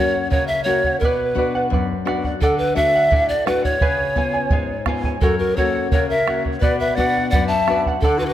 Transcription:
Already playing: nylon-string guitar F#2 A#3 C#4 F#4, charango A#4 C#5 F#5, pan flute C#5
0.14 charango C#5 F#5
0.30 nylon-string guitar C#3, charango A#4 C#5 F#5, pan flute C#5, bombo low
0.47 pan flute E5
0.64 nylon-string guitar A#3 C#4 F#4, charango A#4, pan flute C#5
0.68 charango C#5 F#5
0.84 charango F#5, bombo low
0.88 charango C#5
1.00 nylon-string guitar B2, pan flute B4, bombo low
1.04 charango B4 D5 F#5
1.35 nylon-string guitar B3 D4 F#4, charango B4 D5, bombo low
1.39 charango F#5
1.55 charango D5 F#5
1.70 nylon-string guitar F#2, charango B4 D5 F#5, bombo low
2.05 nylon-string guitar B3 D4 F#4, charango B4 D5 F#5, bombo rim
2.24 charango D5 F#5, bombo low
2.40 nylon-string guitar D3, pan flute A4, charango A4 D5 F#5, bombo low
2.58 pan flute B4
2.75 nylon-string guitar A3 D4 F#4, charango A4 D5 F#5, pan flute E5, bombo low
2.95 charango D5 F#5
3.10 nylon-string guitar A2, charango A4 D5 F#5, bombo low
3.29 pan flute D5
3.46 nylon-string guitar A3 D4 F#4, charango A4 D5 F#5, pan flute B4, bombo rim
3.62 pan flute C#5, charango D5 F#5, bombo low
3.81 nylon-string guitar C#3, charango G#4 B4 C#5 F5 G#5, bombo low
4.16 nylon-string guitar B3 C#4 F4, charango G#4 C#5 F5 G#5, bombo low
4.33 charango G#4 C#5 G#5
4.50 nylon-string guitar G#2, charango G#4 C#5 F5 G#5, bombo low
4.86 nylon-string guitar B3 C#4 F4, charango G#4 C#5 F5 G#5, bombo rim, bombo low
5.04 charango G#4 C#5 G#5, bombo low
5.21 nylon-string guitar F#2, quena F#4, pan flute A4, charango A#4 C#5 F#5, bombo low
5.39 quena F#4, pan flute A#4
5.56 nylon-string guitar A#3 C#4 F#4, quena A4, charango A#4 C#5 F#5, pan flute C#5, bombo low
5.75 charango C#5 F#5
5.90 nylon-string guitar C#3, quena A#4, charango A#4, pan flute C#5, bombo low
5.94 charango C#5 F#5
6.09 quena A#4, pan flute E5
6.27 nylon-string guitar A#3 C#4 F#4, charango A#4 C#5 F#5, bombo rim
6.45 charango C#5 F#5, bombo low
6.60 nylon-string guitar B2, quena B4, charango B4 D5, pan flute D5, bombo low
6.64 charango F#5
6.79 quena B4, pan flute E5
6.95 nylon-string guitar B3 D4 F#4, charango B4 D5, quena D5, pan flute F#5, bombo low
7.00 charango F#5
7.17 charango D5 F#5
7.30 nylon-string guitar F#2, quena D5, pan flute F#5, bombo low
7.34 charango B4 D5 F#5
7.47 quena E5, pan flute A5
7.67 nylon-string guitar B3 D4 F#4, charango B4 D5 F#5, bombo rim
7.86 charango D5 F#5, bombo low
8.01 nylon-string guitar D3, quena D4, pan flute A4, charango A4 D5 F#5, bombo low
8.18 quena F#4, pan flute B4
8.23 quena E4 F#4, pan flute A4
8.28 pan flute B4

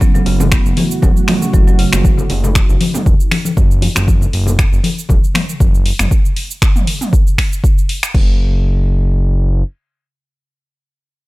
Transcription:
Already playing: analog synth pad E4
0.01 marimba F#3, analog synth pad A3 F#4, kick, high conga, cabasa
0.15 marimba F#3, low bongo, low conga, cabasa
0.26 analog synth bass F#1, marimba C#3, open hi-hat, high bongo
0.40 marimba F#3, low bongo, low conga, cabasa
0.52 marimba B3, finger snap, kick, cabasa
0.66 analog synth bass F#1, cabasa
0.77 marimba E3, open hi-hat, low bongo, high conga
0.91 cabasa
1.02 analog synth bass E1, marimba F#3, kick, low bongo, high conga, low conga, cabasa
1.17 cabasa
1.28 finger snap, mid tom, open hi-hat, high bongo, high conga
1.42 marimba C#4, low bongo, cabasa
1.53 analog synth bass F#1, marimba F#3, kick, high conga, cabasa
1.67 marimba F#3, low bongo, cabasa
1.79 marimba C#3, open hi-hat
1.93 analog synth bass F#1, marimba F#3, finger snap, mid tom, high bongo, cabasa
2.04 analog synth pad D#4, kick, low bongo, high conga, cabasa
2.18 low conga, cabasa
2.30 analog synth bass F#1, open hi-hat, high bongo, low bongo
2.44 low conga, cabasa
2.55 finger snap, kick, cabasa
2.69 analog synth bass F#1, low bongo, cabasa
2.81 open hi-hat, high conga
2.94 mid tom, low bongo, low conga, cabasa
3.06 analog synth bass E1, kick, cabasa
3.20 cabasa
3.31 finger snap, open hi-hat, low bongo, high conga
3.45 high conga, cabasa
3.57 analog synth bass F#1, kick, low bongo, cabasa
3.71 cabasa
3.81 open hi-hat, high bongo, high conga
3.95 analog synth bass F#1, finger snap, high bongo, low bongo, cabasa
4.07 kick, high conga, cabasa
4.21 low conga, cabasa
4.33 analog synth bass F#1, open hi-hat
4.47 low conga, cabasa
4.59 finger snap, kick, cabasa
4.72 analog synth bass F#1, cabasa
4.84 open hi-hat, high conga
4.99 cabasa
5.09 analog synth bass E1, kick, high conga, low conga, cabasa
5.24 cabasa
5.35 finger snap, mid tom, open hi-hat, high conga
5.49 cabasa
5.60 analog synth bass F#1, kick, high conga, cabasa
5.75 cabasa
5.86 open hi-hat
5.99 analog synth bass F#1, finger snap, mid tom, cabasa
6.11 kick, cabasa
6.25 cabasa
6.36 open hi-hat
6.51 cabasa
6.62 finger snap, kick, cabasa
6.76 mid tom, cabasa
6.87 open hi-hat
7.01 mid tom, cabasa
7.13 kick, cabasa
7.27 cabasa
7.38 finger snap, kick, open hi-hat
7.53 cabasa
7.64 kick, cabasa
7.78 cabasa
7.89 open hi-hat
8.03 finger snap, cabasa
8.14 analog synth bass F#1, kick, crash

